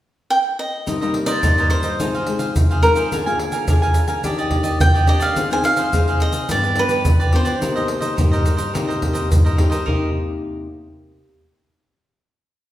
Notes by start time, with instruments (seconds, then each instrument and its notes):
0.30 cavaquinho G5
0.59 cavaquinho D#5
0.86 nylon-string guitar C3 G3 A#3 D#4, cavaquinho D#4 A#4 C5 D#5, pandeiro, shaker, surdo
1.01 nylon-string guitar G3 A#3 D#4, cavaquinho A#4 C5 D#5, pandeiro, shaker
1.14 muted cavaquinho stroke, pandeiro
1.26 cavaquinho A#4 C5 D5 D#5, pandeiro, shaker
1.43 nylon-string guitar G2 G3 A#3 D#4, cavaquinho D#4 A#4 C5 D#5, pandeiro, shaker, surdo
1.58 cavaquinho A#4 C5 D#5, pandeiro, shaker
1.70 cavaquinho C5, pandeiro
1.83 cavaquinho A#4 C5 D#5, pandeiro, shaker
2.00 nylon-string guitar C3 F3 G#3 D#4, cavaquinho D#4 G#4 C5 F5, pandeiro, shaker, surdo
2.15 cavaquinho G#4 C5 F5, pandeiro, shaker
2.27 nylon-string guitar F3 G#3 D#4, pandeiro
2.39 cavaquinho G#4 C5 F5, pandeiro, shaker
2.55 nylon-string guitar C3, muted cavaquinho stroke, pandeiro, shaker, surdo
2.71 cavaquinho G#4 C5 F5, pandeiro, shaker
2.82 nylon-string guitar F3 G#3 D#4, cavaquinho D#4 G#4 A#4 C5 F5, pandeiro
2.96 cavaquinho G#4 C5 F5, pandeiro, shaker
3.11 nylon-string guitar D3 A#3 F4 G#4, cavaquinho D4 A#4 F5 G#5, pandeiro, shaker, surdo
3.26 nylon-string guitar A#3 F4 G#4, cavaquinho A#4 F5 G#5, pandeiro, shaker
3.39 muted cavaquinho stroke, pandeiro
3.52 cavaquinho A#4 F5 G#5, pandeiro, shaker
3.67 nylon-string guitar D3 A#3 F4 G#4, cavaquinho D4 A#4 F5 G#5, pandeiro, shaker, surdo
3.82 cavaquinho A#4 F5 G#5, pandeiro, shaker
3.94 pandeiro, shaker
4.08 cavaquinho A#4 F5 G#5, pandeiro, shaker
4.23 nylon-string guitar D#3 A#3 D4 G4, cavaquinho D4 G4 D5 D#5, pandeiro, shaker, surdo
4.38 cavaquinho G4 D5 D#5, pandeiro, shaker
4.51 nylon-string guitar A#3 D4 G4, pandeiro, surdo
4.63 cavaquinho G4 D5 D#5, pandeiro, shaker
4.79 nylon-string guitar A#2, cavaquinho G5, muted cavaquinho stroke, pandeiro, shaker, surdo
4.94 cavaquinho G4 D5 D#5, pandeiro, shaker
5.07 nylon-string guitar A#3 D4 G4, cavaquinho D4 G4 D5 D#5, pandeiro
5.20 cavaquinho G4 D5 D#5 F5, pandeiro, shaker
5.36 nylon-string guitar F3 C4 D#4 G#4, cavaquinho D#4 G#4 C5 F5, pandeiro, shaker, surdo
5.51 nylon-string guitar C4 D#4 G#4, cavaquinho G#4 C5 F5 G#5, pandeiro, shaker
5.63 cavaquinho F5, muted cavaquinho stroke, pandeiro, shaker
5.77 cavaquinho G#4 C5 F5, pandeiro, shaker
5.93 nylon-string guitar C3 C4 D#4 G#4, cavaquinho D#4 G#4 C5 F5, pandeiro, shaker, surdo
6.08 cavaquinho G#4 C5 F5, pandeiro, shaker
6.20 cavaquinho D#5, pandeiro
6.33 cavaquinho G#4 C5 F5, pandeiro, shaker
6.49 nylon-string guitar G2 F3 B3 D4, cavaquinho F4 G4 B4 D5, pandeiro, shaker, surdo
6.63 cavaquinho G4 B4 D5, pandeiro, shaker
6.75 nylon-string guitar F3 B3 D4, cavaquinho B4, pandeiro
6.88 cavaquinho G4 B4 D5, pandeiro, shaker
7.05 nylon-string guitar D3, muted cavaquinho stroke, pandeiro, shaker, surdo
7.20 cavaquinho G4 B4 D5, pandeiro, shaker
7.32 nylon-string guitar F3 B3 D4, cavaquinho F4 G4 B4 D5, pandeiro
7.36 cavaquinho C5
7.45 cavaquinho G4 B4 D5, pandeiro, shaker
7.61 nylon-string guitar C3 A#3 D#4 G4, cavaquinho D#4 A#4 C5 D#5, pandeiro, shaker, surdo
7.76 nylon-string guitar A#3 D#4 G4, cavaquinho A#4 C5 D#5, pandeiro, shaker
7.88 muted cavaquinho stroke, pandeiro
8.00 cavaquinho A#4 C5 D#5, pandeiro, shaker
8.17 nylon-string guitar G2 A#3 D#4 G4, cavaquinho D#4 A#4 C5 D#5, pandeiro, shaker, surdo
8.31 cavaquinho A#4 C5 D#5, pandeiro, shaker
8.46 pandeiro, shaker
8.57 cavaquinho A#4 C5 D#5, pandeiro, shaker
8.73 nylon-string guitar C3 A#3 D#4 G4, cavaquinho D#4 A#4 C5 D#5, pandeiro, shaker, surdo
8.87 cavaquinho A#4 C5 D#5, pandeiro, shaker
9.02 nylon-string guitar A#3 D#4 G4, pandeiro, surdo
9.13 cavaquinho A#4 C5 D#5, pandeiro, shaker
9.30 nylon-string guitar G2, muted cavaquinho stroke, pandeiro, shaker, surdo
9.45 cavaquinho A#4 C5 D#5, pandeiro, shaker
9.57 nylon-string guitar A#3 D#4 G4, cavaquinho D#4 A#4 C5 D#5, pandeiro
9.70 cavaquinho A#4 C5 D#5, pandeiro, shaker
9.86 nylon-string guitar C3 A#3 D#4 G4, cavaquinho D#4 A#4 C5 D#5, surdo